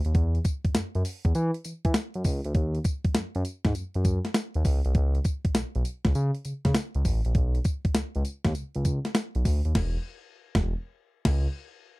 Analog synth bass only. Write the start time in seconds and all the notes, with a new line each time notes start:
0.06 D#2
0.15 E2
0.65 F#2
0.75 F#2
0.95 F#2
1.25 E2
1.35 E3
1.65 E3
1.85 E3
2.15 F#2
2.25 C#2
2.45 D2
2.55 D#2
3.05 F#2
3.16 F#2
3.35 F#2
3.65 G#2
3.76 F#2
3.95 F#2
4.55 D#2
4.65 C#2
4.86 C2
4.95 C#2
5.45 B1
5.56 B1
5.75 B1
6.05 C#2
6.15 C#3
6.45 C#3
6.65 C#3
6.95 C#2
7.05 A1
7.26 A#1
7.35 B1
7.85 C#2
7.96 C#2
8.16 C#2
8.45 D#2
8.56 C#2
8.76 C#2
9.36 B1
9.45 D2
9.65 D#2
9.75 E1
10.55 E1
11.25 C#2